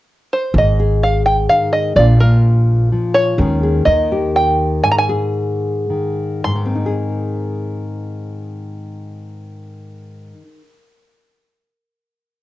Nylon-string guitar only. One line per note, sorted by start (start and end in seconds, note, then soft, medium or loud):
0.56 1.94 G#2 medium
0.80 1.94 G#4 medium
1.49 1.97 D#3 soft
1.96 3.38 A#2 medium
1.96 2.91 F3 soft
1.96 3.36 A#3 soft
1.96 3.36 D4 soft
1.96 2.21 F4 soft
2.22 3.39 F4 medium
2.92 3.36 F3 medium
3.38 3.85 D#3 medium
3.38 3.86 G#3 soft
3.38 3.83 C#4 soft
3.38 3.62 G#4 medium
3.63 3.83 G#4 medium
3.87 5.89 D#3 medium
4.12 4.82 G4 soft
4.83 6.41 G#2 medium
5.09 6.42 G#4 medium
5.90 6.54 D#3 soft
6.45 10.32 G#2 soft
6.56 10.42 D#3 soft
6.66 10.52 C4 soft
6.75 10.62 D#4 soft
6.86 10.72 G#4 soft